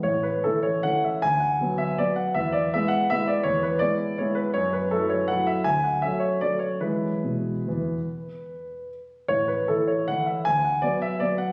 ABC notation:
X:1
M:3/4
L:1/8
Q:1/4=157
K:A
V:1 name="Grand piano"
c B A c f e | g f2 e d f | e d e f e d | c B d2 c B |
c B A c f e | g f e c d c | B6- | B4 z2 |
c B A c f e | g f d e d f |]
V:2 name="Grand piano"
A,,,2 [E,A,C]2 [E,A,C]2 | D,,2 [F,B,]2 [F,B,]2 | E,,2 [G,B,E]2 [G,B,E]2 | E,,2 [G,B,E]2 [G,B,E]2 |
F,,2 [F,A,E]2 [F,A,E]2 | D,,2 [F,A,C]2 [F,A,C]2 | [E,G,E]2 B,,2 E,,2 | z6 |
A,,,2 [E,A,E]2 [E,A,E]2 | D,,2 [F,B,]2 [F,B,]2 |]